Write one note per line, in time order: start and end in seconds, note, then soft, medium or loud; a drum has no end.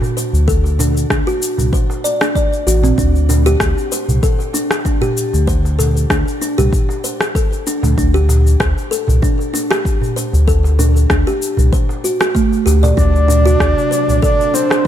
0.02 darbuka dum medium
0.02 shaker soft
0.17 0.33 C5 medium
0.17 shaker medium
0.33 1.06 D2 loud
0.33 darbuka ka soft
0.33 shaker soft
0.48 0.64 A4 medium
0.48 kick medium
0.48 shaker soft
0.64 darbuka ka soft
0.64 shaker soft
0.79 0.89 D4 medium
0.79 darbuka tek medium
0.79 darbuka dum medium
0.79 shaker medium
0.97 shaker soft
1.10 1.24 D2 medium
1.10 1.26 D4 medium
1.10 kick loud
1.10 cross-stick medium
1.10 shaker soft
1.27 1.41 F#4 medium
1.27 shaker soft
1.42 shaker medium
1.58 1.70 C2 medium
1.58 darbuka dum medium
1.58 shaker soft
1.73 1.89 C5 medium
1.73 kick loud
1.73 shaker soft
1.90 darbuka tek medium
1.90 shaker soft
2.04 2.19 D5 medium
2.04 shaker medium
2.21 2.35 D4 medium
2.21 cross-stick medium
2.21 shaker soft
2.35 2.51 D5 medium
2.35 kick loud
2.35 shaker soft
2.53 shaker soft
2.67 2.93 A1 loud
2.67 2.76 F#4 medium
2.67 darbuka ka medium
2.67 darbuka tek soft
2.67 shaker medium
2.83 2.92 C4 medium
2.83 darbuka tek medium
2.83 darbuka dum medium
2.83 shaker soft
2.98 3.56 D2 loud
2.98 3.07 D4 medium
2.98 kick medium
2.98 shaker soft
3.16 shaker soft
3.29 3.45 D4 medium
3.29 darbuka tek medium
3.29 darbuka dum medium
3.29 shaker medium
3.46 3.60 G4 loud
3.46 shaker soft
3.60 3.74 D2 medium
3.60 kick medium
3.60 cross-stick medium
3.60 shaker soft
3.78 shaker soft
3.92 4.08 C5 medium
3.92 shaker medium
4.08 4.20 C2 medium
4.08 darbuka dum medium
4.08 shaker soft
4.23 4.39 A4 medium
4.23 kick loud
4.23 shaker soft
4.39 darbuka ka soft
4.39 shaker soft
4.53 4.64 D4 medium
4.53 darbuka ka medium
4.53 shaker medium
4.71 cross-stick medium
4.71 darbuka tek medium
4.71 shaker soft
4.85 5.01 D4 medium
4.85 kick medium
4.85 shaker soft
5.01 5.16 G4 loud
5.01 darbuka dum medium
5.01 shaker soft
5.17 shaker medium
5.33 6.06 D2 loud
5.33 darbuka ka soft
5.33 shaker soft
5.47 5.64 C5 medium
5.47 kick medium
5.47 shaker soft
5.65 darbuka ka medium
5.65 shaker soft
5.79 5.95 A4 medium
5.79 darbuka tek medium
5.79 darbuka dum medium
5.79 shaker medium
5.97 shaker soft
6.10 6.24 D2 medium
6.10 6.20 D4 medium
6.10 kick medium
6.10 cross-stick medium
6.10 shaker soft
6.28 shaker soft
6.41 6.58 D4 medium
6.41 shaker medium
6.58 6.70 C2 loud
6.58 6.72 G4 medium
6.58 darbuka dum medium
6.58 shaker soft
6.73 kick loud
6.73 shaker soft
6.89 darbuka tek medium
6.89 shaker soft
7.04 7.20 C5 medium
7.04 shaker medium
7.21 cross-stick medium
7.21 shaker soft
7.35 7.51 A4 medium
7.35 kick loud
7.35 shaker soft
7.53 shaker soft
7.67 7.76 D4 medium
7.67 darbuka ka medium
7.67 darbuka tek soft
7.67 shaker medium
7.83 7.95 D2 medium
7.83 darbuka tek medium
7.83 darbuka dum medium
7.83 shaker soft
7.98 8.56 D2 loud
7.98 8.14 D4 medium
7.98 kick medium
7.98 shaker soft
8.14 8.28 G4 medium
8.14 shaker soft
8.29 darbuka tek medium
8.29 darbuka dum medium
8.29 shaker medium
8.47 shaker soft
8.60 8.74 D2 medium
8.60 8.76 C5 medium
8.60 kick loud
8.60 cross-stick medium
8.60 shaker soft
8.78 shaker soft
8.91 9.07 A4 medium
8.91 shaker medium
9.08 9.20 C2 medium
9.08 darbuka dum medium
9.08 shaker soft
9.22 9.32 D4 medium
9.22 kick medium
9.22 shaker soft
9.39 darbuka ka soft
9.39 shaker soft
9.54 9.70 D4 medium
9.54 darbuka ka medium
9.54 shaker medium
9.71 9.84 G4 loud
9.71 cross-stick medium
9.71 darbuka tek medium
9.71 shaker soft
9.85 kick loud
9.85 shaker soft
10.01 darbuka dum medium
10.01 shaker soft
10.16 10.32 C5 medium
10.16 shaker medium
10.33 11.06 D2 loud
10.33 darbuka ka soft
10.33 shaker soft
10.48 10.64 A4 medium
10.48 kick medium
10.48 shaker soft
10.64 darbuka ka medium
10.64 shaker soft
10.79 10.89 D4 medium
10.79 darbuka tek medium
10.79 darbuka dum medium
10.79 shaker medium
10.97 shaker soft
11.10 11.24 D2 medium
11.10 11.26 D4 medium
11.10 kick medium
11.10 cross-stick medium
11.10 shaker soft
11.27 11.41 G4 medium
11.27 shaker soft
11.42 shaker medium
11.57 11.70 C2 loud
11.57 darbuka dum medium
11.57 shaker soft
11.73 11.89 C5 medium
11.73 kick medium
11.73 shaker soft
11.89 darbuka tek medium
11.89 shaker soft
12.04 12.14 F#4 medium
12.04 shaker medium
12.21 12.34 F#4 loud
12.21 cross-stick medium
12.21 shaker soft
12.35 12.50 A3 medium
12.35 kick loud
12.35 shaker soft
12.52 darbuka tek soft
12.52 shaker soft
12.66 12.92 D2 medium
12.66 12.76 G4 medium
12.66 darbuka ka medium
12.66 darbuka tek soft
12.66 shaker medium
12.83 12.97 D5 medium
12.83 darbuka tek medium
12.83 darbuka dum medium
12.83 shaker soft
12.97 13.56 D2 medium
12.97 14.87 C3 medium
12.97 14.87 F#3 medium
12.97 13.07 D4 medium
12.97 14.87 D4 medium
12.97 14.19 D5 loud
12.97 kick medium
12.97 shaker soft
13.16 shaker soft
13.28 13.45 D4 medium
13.28 darbuka tek medium
13.28 darbuka dum medium
13.28 shaker medium
13.46 13.59 F#4 loud
13.46 shaker soft
13.60 13.74 D2 medium
13.60 kick medium
13.60 cross-stick medium
13.60 shaker soft
13.78 shaker soft
13.91 14.07 C5 medium
13.91 shaker medium
14.08 14.20 C2 medium
14.08 darbuka dum medium
14.08 shaker soft
14.22 14.39 A4 medium
14.22 14.56 D5 loud
14.22 kick loud
14.22 shaker soft
14.39 darbuka ka medium
14.39 shaker soft
14.54 14.64 D4 medium
14.54 14.87 C5 medium
14.54 darbuka ka medium
14.54 shaker medium
14.70 cross-stick medium
14.70 darbuka tek medium
14.70 shaker soft